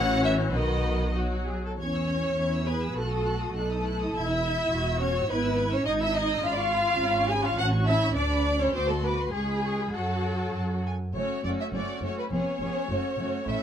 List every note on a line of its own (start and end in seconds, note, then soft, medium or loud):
0.00 0.52 A1 medium
0.00 0.52 E3 medium
0.00 0.53 C#4 medium
0.00 0.51 F#4 medium
0.00 0.51 C#5 medium
0.00 0.22 F#5 loud
0.24 0.32 E5 medium
0.52 1.57 B1 medium
0.52 1.15 D#3 medium
0.52 1.47 D#4 medium
0.52 1.14 D#4 soft
0.52 1.07 F#4 medium
0.52 1.09 B4 medium
0.52 1.14 D#5 medium
1.15 1.74 F#3 soft
1.15 1.45 F#4 medium
1.47 1.63 G#4 soft
1.65 1.71 A4 soft
1.78 2.30 E2 soft
1.78 2.66 C#4 medium
1.78 2.65 C#5 medium
1.78 1.93 G#6 soft
1.95 2.09 E6 soft
2.09 2.23 G#6 soft
2.23 2.37 E6 soft
2.36 2.88 E2 soft
2.36 2.64 E4 soft
2.36 2.51 G#6 soft
2.53 2.66 E6 soft
2.65 2.95 B3 soft
2.65 2.95 G#4 soft
2.65 2.95 B4 medium
2.65 2.81 G#6 soft
2.82 2.96 E6 soft
2.95 3.47 B1 medium
2.95 3.52 A3 soft
2.95 3.54 F#4 soft
2.95 3.54 A4 medium
2.95 3.10 F#6 soft
3.11 3.25 D#6 soft
3.26 3.40 F#6 soft
3.40 3.54 D#6 soft
3.53 4.07 B1 soft
3.53 4.13 A3 soft
3.53 3.84 D#4 soft
3.53 4.14 A4 medium
3.53 3.69 F#6 soft
3.70 3.85 D#6 soft
3.84 4.70 E4 soft
3.84 4.00 F#6 soft
4.00 4.15 D#6 soft
4.14 4.66 E1 medium
4.14 4.99 E4 medium
4.14 5.02 E5 medium
4.14 4.29 G#6 soft
4.30 4.44 E6 soft
4.45 4.59 G#6 soft
4.60 4.73 E6 soft
4.72 5.23 E1 medium
4.72 5.29 F#4 medium
4.72 4.86 G#6 soft
4.88 5.01 E6 soft
5.01 5.09 C#4 medium
5.01 5.29 C#5 medium
5.01 5.15 G#6 soft
5.16 5.30 E6 soft
5.29 5.79 G#1 medium
5.29 5.71 B3 medium
5.29 5.84 E4 medium
5.29 5.72 B4 medium
5.29 5.43 G#6 soft
5.43 5.58 E6 soft
5.56 5.71 G#6 soft
5.71 5.85 C#4 medium
5.71 5.87 C#5 medium
5.71 5.86 E6 soft
5.85 6.36 G#1 medium
5.85 6.00 D#4 medium
5.85 6.42 D#4 medium
5.85 5.91 D#5 medium
5.85 5.99 G#6 soft
6.00 6.14 E4 medium
6.00 6.15 E5 medium
6.00 6.15 E6 soft
6.15 6.43 D#4 medium
6.15 6.44 D#5 medium
6.15 6.29 G#6 soft
6.30 6.43 E6 soft
6.42 6.93 G#1 medium
6.42 6.50 C#4 soft
6.42 7.29 F4 medium
6.42 6.51 F5 medium
6.42 6.56 B5 soft
6.52 6.58 D5 medium
6.58 7.29 F5 medium
6.58 6.73 C#6 soft
6.72 7.00 F4 medium
6.72 6.87 B5 soft
6.87 7.01 C#6 soft
7.00 7.50 G#1 medium
7.00 8.13 C#4 medium
7.00 7.15 B5 medium
7.15 7.29 C#6 soft
7.29 7.43 G#4 medium
7.29 7.43 G#5 medium
7.29 7.44 B5 medium
7.44 7.57 F4 medium
7.44 7.58 F5 medium
7.44 7.58 C#6 soft
7.57 8.08 A1 medium
7.57 7.86 F#4 medium
7.57 7.66 F#5 medium
7.57 7.71 A5 medium
7.71 7.86 C#6 soft
7.86 8.15 E4 medium
7.86 8.14 E5 medium
7.86 8.01 A5 soft
8.02 8.16 C#6 soft
8.15 8.66 D2 medium
8.15 8.73 D4 medium
8.15 8.58 D4 medium
8.15 8.58 D5 medium
8.15 8.29 D6 soft
8.31 8.45 B5 soft
8.46 8.59 D6 soft
8.59 8.73 C#4 medium
8.59 8.74 C#5 medium
8.59 8.75 B5 soft
8.74 9.26 D2 medium
8.74 8.80 C4 medium
8.74 9.32 F#4 medium
8.74 8.88 C5 medium
8.74 8.88 D6 soft
8.88 8.94 A3 medium
8.88 9.03 A4 medium
8.88 9.04 C6 soft
9.02 9.11 B3 medium
9.02 9.32 B4 medium
9.06 9.19 D6 soft
9.20 9.34 C6 soft
9.32 9.86 C#2 soft
9.32 9.92 G#3 soft
9.32 9.92 G#4 medium
9.32 9.48 C#6 soft
9.50 9.64 B5 soft
9.65 9.79 C#6 soft
9.80 9.94 B5 soft
9.93 10.47 F#2 soft
9.93 10.84 F#3 soft
9.93 10.82 F#4 medium
9.93 10.85 A4 soft
9.93 10.08 F#5 soft
10.09 10.24 A5 soft
10.25 10.39 F#5 soft
10.40 10.54 A5 soft
10.54 11.07 F#2 soft
10.54 10.63 A5 soft
10.87 10.95 G#5 soft
11.15 11.23 F#1 soft
11.15 11.23 F#2 soft
11.15 11.43 A3 soft
11.15 11.43 C#4 soft
11.15 11.45 F#4 soft
11.15 11.42 C#5 medium
11.44 11.53 F#1 soft
11.44 11.52 F#2 soft
11.44 11.72 A3 soft
11.44 11.72 C#4 soft
11.44 11.73 F#4 soft
11.44 11.49 D5 medium
11.60 11.66 E5 medium
11.73 11.82 F#1 soft
11.73 11.82 F#2 soft
11.73 12.01 A3 soft
11.73 12.00 C#4 soft
11.73 12.02 F#4 soft
11.73 12.02 D5 medium
12.01 12.10 F#1 soft
12.01 12.10 F#2 soft
12.01 12.30 A3 soft
12.01 12.30 C#4 soft
12.01 12.32 F#4 soft
12.01 12.17 C#5 medium
12.18 12.24 B4 medium
12.31 12.40 F1 soft
12.31 12.39 F2 soft
12.31 12.59 B3 soft
12.31 12.59 C#4 soft
12.31 12.60 G#4 soft
12.31 13.43 C#5 medium
12.60 12.68 F1 soft
12.60 12.69 F2 soft
12.60 12.88 B3 soft
12.60 12.88 C#4 soft
12.60 12.89 G#4 soft
12.89 12.98 F#1 soft
12.89 12.98 F#2 soft
12.89 13.17 A3 soft
12.89 13.17 C#4 soft
12.89 13.17 F#4 soft
13.18 13.26 F#1 soft
13.18 13.26 F#2 soft
13.18 13.45 A3 soft
13.18 13.45 C#4 soft
13.18 13.46 F#4 soft
13.46 13.55 A1 medium
13.46 13.54 A2 soft
13.46 13.63 A3 soft
13.46 13.63 C#4 soft
13.46 13.63 E4 soft
13.46 13.63 E5 medium